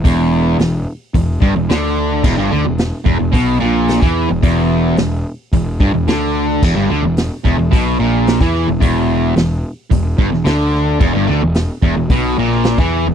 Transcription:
0.04 picked electric bass E1, distorted electric guitar E2, kick, open hi-hat
0.59 picked electric bass E1, distorted electric guitar E2, snare, open hi-hat
1.14 picked electric bass E1, distorted electric guitar E2, kick, open hi-hat
1.41 picked electric bass G1, distorted electric guitar G2, kick
1.56 picked electric bass E1, distorted electric guitar E2
1.69 picked electric bass D2, distorted electric guitar D3, snare, open hi-hat
2.23 picked electric bass E1, distorted electric guitar E2, kick, crash
2.37 picked electric bass G1, distorted electric guitar G2
2.51 picked electric bass D2, distorted electric guitar D3
2.64 picked electric bass E1, distorted electric guitar E2
2.78 snare, open hi-hat
3.05 picked electric bass E1, distorted electric guitar E2, kick
3.20 picked electric bass E1, distorted electric guitar E2
3.32 picked electric bass B1, distorted electric guitar B2, kick, open hi-hat
3.60 picked electric bass A#1, distorted electric guitar A#2
3.88 snare, open hi-hat
4.01 picked electric bass E2, distorted electric guitar E3, kick
4.29 picked electric bass E1, distorted electric guitar E2
4.42 picked electric bass E1, distorted electric guitar E2, kick, open hi-hat
4.97 picked electric bass E1, distorted electric guitar E2, snare, open hi-hat
5.53 picked electric bass E1, distorted electric guitar E2, kick, open hi-hat
5.80 picked electric bass G1, distorted electric guitar G2, kick
5.94 picked electric bass E1, distorted electric guitar E2
6.07 picked electric bass D2, distorted electric guitar D3, snare, open hi-hat
6.62 picked electric bass E1, distorted electric guitar E2, kick, crash
6.76 picked electric bass G1, distorted electric guitar G2
6.90 picked electric bass D2, distorted electric guitar D3
7.03 picked electric bass E1, distorted electric guitar E2
7.17 snare, open hi-hat
7.45 picked electric bass E1, distorted electric guitar E2, kick
7.58 picked electric bass E1, distorted electric guitar E2
7.71 picked electric bass B1, distorted electric guitar B2, kick, open hi-hat
7.99 picked electric bass A#1, distorted electric guitar A#2
8.27 snare, open hi-hat
8.40 picked electric bass E2, distorted electric guitar E3, kick
8.55 snare
8.67 picked electric bass E1, distorted electric guitar E2
8.80 picked electric bass E1, distorted electric guitar E2, kick, open hi-hat
9.36 picked electric bass E1, distorted electric guitar E2, snare, open hi-hat
9.91 picked electric bass E1, distorted electric guitar E2, kick, open hi-hat
10.18 picked electric bass G1, distorted electric guitar G2, kick
10.31 picked electric bass E1, distorted electric guitar E2, snare
10.44 picked electric bass D2, distorted electric guitar D3, snare, open hi-hat
10.75 snare
10.99 picked electric bass E1, distorted electric guitar E2, kick, crash
11.14 picked electric bass G1, distorted electric guitar G2
11.27 picked electric bass D2, distorted electric guitar D3
11.42 picked electric bass E1, distorted electric guitar E2
11.54 snare, open hi-hat
11.82 picked electric bass E1, distorted electric guitar E2, kick
11.97 picked electric bass E1, distorted electric guitar E2
12.10 picked electric bass B1, distorted electric guitar B2, kick, open hi-hat
12.38 picked electric bass A#1, distorted electric guitar A#2
12.52 snare
12.64 snare, open hi-hat
12.78 picked electric bass E2, distorted electric guitar E3, kick
13.06 picked electric bass E1, distorted electric guitar E2

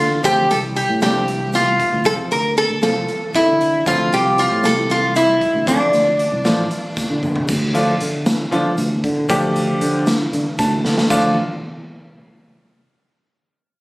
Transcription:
Already playing: fretless electric bass D3, resonator guitar played with a steel bar F4
0.23 fretless electric bass D2, grand piano F3 A3 C4 F4, resonator guitar played with a steel bar G4, kick, closed hi-hat, shaker
0.50 fretless electric bass C2, resonator guitar played with a steel bar A4, closed hi-hat
0.76 resonator guitar played with a steel bar G4, closed hi-hat, shaker
0.89 fretless electric bass A2
1.01 fretless electric bass C2, grand piano F3 A3 C4 D4, resonator guitar played with a steel bar G4, snare, closed hi-hat, shaker
1.28 closed hi-hat
1.53 resonator guitar played with a steel bar F4, snare, closed hi-hat, shaker
1.80 kick, closed hi-hat
1.93 fretless electric bass D2
2.05 fretless electric bass C2, grand piano F3 A3 C4 F4, resonator guitar played with a steel bar A4, kick, closed hi-hat, shaker
2.31 fretless electric bass D2, resonator guitar played with a steel bar A#4, closed hi-hat
2.57 resonator guitar played with a steel bar A4, closed hi-hat
2.70 fretless electric bass D2
2.82 fretless electric bass C2, grand piano F3 A3 C4 F4, resonator guitar played with a steel bar A4, snare, closed hi-hat, shaker
3.08 closed hi-hat
3.34 resonator guitar played with a steel bar E4, kick, closed hi-hat, shaker
3.47 fretless electric bass D3
3.61 closed hi-hat
3.86 fretless electric bass D2, grand piano F3 A3 C4 F4, resonator guitar played with a steel bar F4, kick, closed hi-hat, shaker
4.13 fretless electric bass C2, resonator guitar played with a steel bar G4, closed hi-hat
4.38 resonator guitar played with a steel bar F4, closed hi-hat, shaker
4.51 fretless electric bass A2
4.63 fretless electric bass C2, resonator guitar played with a steel bar A4, snare, closed hi-hat, shaker
4.90 resonator guitar played with a steel bar F4, snare, closed hi-hat
5.15 resonator guitar played with a steel bar E4, closed hi-hat, shaker
5.41 kick, closed hi-hat
5.54 fretless electric bass D2
5.67 fretless electric bass D2, grand piano F3 A3 D4 F4, resonator guitar played with a steel bar D4, kick, closed hi-hat, shaker
5.93 fretless electric bass D2, snare, closed hi-hat, shaker
6.19 closed hi-hat, shaker
6.32 fretless electric bass C2
6.45 fretless electric bass A1, grand piano F3 A3 D4 F4, snare, closed hi-hat, shaker
6.71 closed hi-hat
6.97 kick, snare, shaker
7.10 fretless electric bass D3
7.23 mid tom, shaker
7.36 floor tom
7.48 fretless electric bass D2, kick, crash, shaker
7.74 grand piano F3 A3 D4 F4, closed hi-hat, shaker
8.01 fretless electric bass D3, closed hi-hat
8.26 snare, closed hi-hat, shaker
8.51 fretless electric bass D3, grand piano F3 A3 D4 F4, closed hi-hat
8.78 fretless electric bass D2, closed hi-hat, shaker
9.04 fretless electric bass D3, kick, closed hi-hat
9.29 fretless electric bass D2, grand piano F3 A3 D4 G4, kick, closed hi-hat, shaker
9.55 closed hi-hat, shaker
9.81 fretless electric bass D3, closed hi-hat
10.06 snare, closed hi-hat, shaker
10.33 fretless electric bass D3, closed hi-hat
10.59 fretless electric bass D2, grand piano A5, kick, snare, closed hi-hat, shaker
10.84 fretless electric bass D3, snare
10.98 snare
11.10 fretless electric bass D2, grand piano F3 A3 D4 F4, kick, crash, shaker

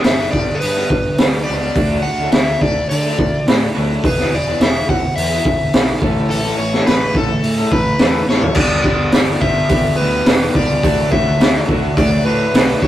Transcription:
Already playing: clean electric guitar G2 D3 G3 B3 D4 G4
0.04 picked electric bass G1, overdriven electric guitar E5, muted clean electric guitar stroke, snare, open hi-hat
0.32 picked electric bass G1, clean electric guitar D3 G3 B3 D4, overdriven electric guitar D5, kick
0.49 muted clean electric guitar stroke
0.55 overdriven electric guitar A4
0.60 picked electric bass G2, overdriven electric guitar B4, open hi-hat
0.76 clean electric guitar D3 G3 B3 D4
0.90 picked electric bass G1, kick
1.18 picked electric bass D2, clean electric guitar D3 G3 B3 D4, snare, open hi-hat
1.44 clean electric guitar G4, overdriven electric guitar D5
1.49 picked electric bass C#2, clean electric guitar G2 D3 G3 B3 D4
1.63 clean electric guitar D3 G3 B3 D4
1.75 picked electric bass D2, clean electric guitar D3 F#3 A3 D4, kick, open hi-hat
1.80 clean electric guitar F#4
1.91 clean electric guitar D3 F#3 A3 D4
2.03 picked electric bass D2, overdriven electric guitar F#5, muted clean electric guitar stroke
2.20 clean electric guitar D3 F#3 A3 D4
2.32 picked electric bass D2, overdriven electric guitar E5, muted clean electric guitar stroke, snare, open hi-hat
2.61 picked electric bass D2, clean electric guitar D3 F#3 A3 D4, overdriven electric guitar D5, kick
2.77 muted clean electric guitar stroke
2.90 picked electric bass D3, overdriven electric guitar D5, open hi-hat
3.06 clean electric guitar D3 F#3 A3 D4
3.19 picked electric bass D2, kick
3.47 picked electric bass A2, clean electric guitar D3 F#3 A3 D4, snare, open hi-hat
3.75 picked electric bass D2, clean electric guitar D3 F#3 A3 D4 F#4
3.89 clean electric guitar D3 F#3 A3 D4
4.03 picked electric bass E1, clean electric guitar E3 F#3 B3 E4 G#4, overdriven electric guitar B4, kick, open hi-hat
4.18 clean electric guitar F#3 B3 E4 G#4, snare
4.33 picked electric bass E1, overdriven electric guitar D5, muted clean electric guitar stroke
4.47 clean electric guitar F#3 B3 E4 G#4
4.60 picked electric bass E1, overdriven electric guitar E5, muted clean electric guitar stroke, snare, open hi-hat
4.89 picked electric bass E1, clean electric guitar F#3 B3 E4 G#4, overdriven electric guitar F#5, kick
5.03 muted clean electric guitar stroke
5.16 picked electric bass E2, overdriven electric guitar E5, open hi-hat
5.31 clean electric guitar F#3 B3 E4 G#4
5.45 picked electric bass E1, kick
5.73 picked electric bass B1, clean electric guitar F#3 B3 E4 G#4, snare, open hi-hat
6.00 picked electric bass A1, clean electric guitar A2 E3 A3 C#4 E4 A4, kick
6.18 clean electric guitar A3 C#4 E4 A4
6.30 picked electric bass A1, overdriven electric guitar A4, open hi-hat
6.45 clean electric guitar A3 C#4 E4 A4
6.58 picked electric bass A1, overdriven electric guitar C#5, muted clean electric guitar stroke
6.73 clean electric guitar A3 C#4 E4 A4, snare
6.86 picked electric bass A1, overdriven electric guitar B4, muted clean electric guitar stroke, snare, open hi-hat
7.15 picked electric bass A1, clean electric guitar A3 C#4 E4 A4, overdriven electric guitar A4, kick
7.30 muted clean electric guitar stroke
7.43 picked electric bass A2, open hi-hat
7.58 clean electric guitar A3 C#4 E4 A4
7.72 picked electric bass A1, overdriven electric guitar B4, glockenspiel B5, kick
7.99 picked electric bass E2, clean electric guitar A2 E3 A3 C#4 E4 A4, snare, open hi-hat
8.29 picked electric bass A1, clean electric guitar A3 C#4 E4 A4, overdriven electric guitar C#5, glockenspiel C#6, snare
8.42 clean electric guitar A3 C#4 E4 A4, floor tom
8.55 picked electric bass G1, clean electric guitar G2 D3 G3 B3 D4 G4, string machine B4 G5 D6, overdriven electric guitar D5, kick, crash
8.59 glockenspiel D6
8.84 picked electric bass G1, clean electric guitar G2 D3 G3 B3 D4 G4, kick
9.12 picked electric bass G1, clean electric guitar G2 D3 G3 B3 D4 G4, snare, open hi-hat, tambourine
9.39 picked electric bass G1, clean electric guitar G2 D3 G4, overdriven electric guitar E5, glockenspiel E6, kick
9.43 clean electric guitar G2 G3 B3 D4
9.69 picked electric bass G1, clean electric guitar G2 D3 G3 B3 D4 G4, kick, open hi-hat
9.96 clean electric guitar G2 D3 G3 B3 D4 G4, overdriven electric guitar B4, glockenspiel B5
10.01 picked electric bass D2
10.25 picked electric bass E1, clean electric guitar G2 D3 G3 B3 D4 G4, snare, open hi-hat, tambourine
10.54 picked electric bass C#2, clean electric guitar G2 D3 G3 B3 D4 G4, overdriven electric guitar D5, glockenspiel D6, kick
10.81 picked electric bass D2, clean electric guitar D3 F#3 A3 D4 F#4, string machine A4 F#5, kick, open hi-hat
11.11 picked electric bass D2, clean electric guitar D3 F#3 A3 D4 F#4, overdriven electric guitar E5, glockenspiel E6, kick
11.39 picked electric bass D2, clean electric guitar D3 F#3 A3 D4 F#4, snare, open hi-hat, tambourine
11.69 picked electric bass D2, clean electric guitar D3 F#3 A3 D4 F#4, kick
11.94 picked electric bass D2, clean electric guitar D3 F#3 A3 D4, overdriven electric guitar D5, glockenspiel D6, kick, open hi-hat
11.99 clean electric guitar F#4
12.25 picked electric bass A2, clean electric guitar D3 F#3 A3 D4 F#4, overdriven electric guitar B4, glockenspiel B5
12.53 picked electric bass B1, clean electric guitar D3 F#3 A3 D4 F#4, snare, open hi-hat, tambourine
12.81 picked electric bass F#2, clean electric guitar D3 F#3 A3 D4, overdriven electric guitar C#5, glockenspiel C#6, kick

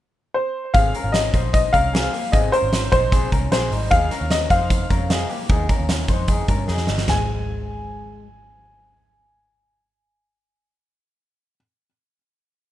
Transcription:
0.34 upright piano C5
0.74 picked electric bass G#1, clean electric guitar C4 G#4, upright piano F5, kick, closed hi-hat
0.95 clean electric guitar C#4 A#4, closed hi-hat
1.04 picked electric bass G#1
1.12 upright piano D#5, snare, closed hi-hat
1.34 picked electric bass A#1, clean electric guitar D#4 C5, kick, closed hi-hat
1.53 upright piano D#5, kick, closed hi-hat
1.73 picked electric bass C2, clean electric guitar C#4 A#4, upright piano F5, kick, closed hi-hat
1.93 clean electric guitar C4 G#4, snare, closed hi-hat
2.13 clean electric guitar A#3 G4, open hi-hat
2.32 picked electric bass G#1, clean electric guitar C4 G#4, upright piano D#5, kick, closed hi-hat
2.52 clean electric guitar C#4 A#4, upright piano C5, closed hi-hat
2.63 picked electric bass G#1
2.73 snare, closed hi-hat
2.92 picked electric bass A#1, clean electric guitar D#4 C5, upright piano C5, kick, closed hi-hat
3.12 clean electric guitar C4 G#4, kick, closed hi-hat
3.32 picked electric bass C2, clean electric guitar C#4 A#4, kick, closed hi-hat
3.51 picked electric bass A#1, clean electric guitar C4 G#4, upright piano C5, snare, closed hi-hat
3.71 picked electric bass G#1, clean electric guitar G3 D#4, open hi-hat
3.90 picked electric bass D#2, clean electric guitar D#4 G#4, upright piano F5, kick, closed hi-hat
4.11 clean electric guitar C#4 A#4, snare, closed hi-hat
4.21 picked electric bass D#2
4.31 upright piano D#5, snare, closed hi-hat
4.50 picked electric bass F2, clean electric guitar D#4 C5, upright piano F5, kick, closed hi-hat
4.70 kick, closed hi-hat
4.90 picked electric bass F2, clean electric guitar C#4 A#4, kick, closed hi-hat
5.10 clean electric guitar D#4 G#4, snare, closed hi-hat
5.30 clean electric guitar A#3 G4, open hi-hat
5.49 picked electric bass D#2, clean electric guitar D#4 G#4, kick, closed hi-hat
5.69 clean electric guitar C#4 A#4, kick, closed hi-hat
5.80 picked electric bass D#2
5.89 snare, closed hi-hat
6.08 picked electric bass F2, clean electric guitar D#4 C5, kick, closed hi-hat
6.28 clean electric guitar D#4 G#4, kick, closed hi-hat
6.48 picked electric bass G2, clean electric guitar C#4 A#4, kick, closed hi-hat
6.68 picked electric bass F2, clean electric guitar D#4 G#4, snare
6.77 snare
6.87 picked electric bass G1, clean electric guitar G3 D#4, snare
6.98 snare
7.08 picked electric bass G#1, clean electric guitar G#3, upright piano G#5, snare, floor tom

